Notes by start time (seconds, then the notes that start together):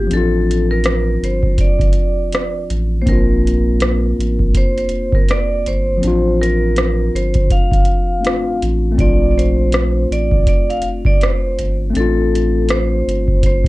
Already playing: A3 C4 D4 F4 G4
0.07 F3 C4, closed hi-hat
0.11 A1 D4 A4
0.17 F4
0.51 closed hi-hat
0.71 A#4
0.84 cross-stick, closed hi-hat
1.22 G1 C5, closed hi-hat
1.43 kick
1.58 F1 D5, kick, closed hi-hat
1.79 kick, closed hi-hat
1.93 closed hi-hat
2.32 cross-stick, closed hi-hat
2.70 A1, closed hi-hat
3.02 A#3 C4 C5
3.06 A#1 D4 A#4, kick, closed hi-hat
3.12 F4
3.47 closed hi-hat
3.80 cross-stick, closed hi-hat
4.18 A1, closed hi-hat
4.39 kick
4.54 F1 C5, kick, closed hi-hat
4.78 C5, closed hi-hat
4.89 closed hi-hat
5.12 A#4, kick
5.29 D5, cross-stick, closed hi-hat
5.66 G1 C5, closed hi-hat
5.97 F3 C4
6.03 A1 D4, closed hi-hat
6.07 F4
6.42 A#4, closed hi-hat
6.76 cross-stick, closed hi-hat
7.14 G1 C5, closed hi-hat
7.34 kick, closed hi-hat
7.50 F1 F5, kick, closed hi-hat
7.71 kick, closed hi-hat
7.85 closed hi-hat
8.21 A3 C4 D4, closed hi-hat
8.26 F4, cross-stick
8.62 A1, closed hi-hat
8.91 A3 C4
8.98 A#1 D4 F4 D5, kick, closed hi-hat
9.31 D5
9.38 C5, closed hi-hat
9.72 cross-stick, closed hi-hat
10.11 A1 D5, closed hi-hat
10.31 kick
10.47 F1 D5, kick, closed hi-hat
10.70 F5, closed hi-hat
10.82 closed hi-hat
11.05 D5, kick
11.21 C5, cross-stick, closed hi-hat
11.59 G1, closed hi-hat
11.90 A3 C4
11.95 A1 D4 A4, closed hi-hat
12.00 F4
12.35 closed hi-hat
12.69 C5, cross-stick, closed hi-hat
13.07 G1, closed hi-hat
13.28 kick
13.43 F1 C5, kick, closed hi-hat
13.64 kick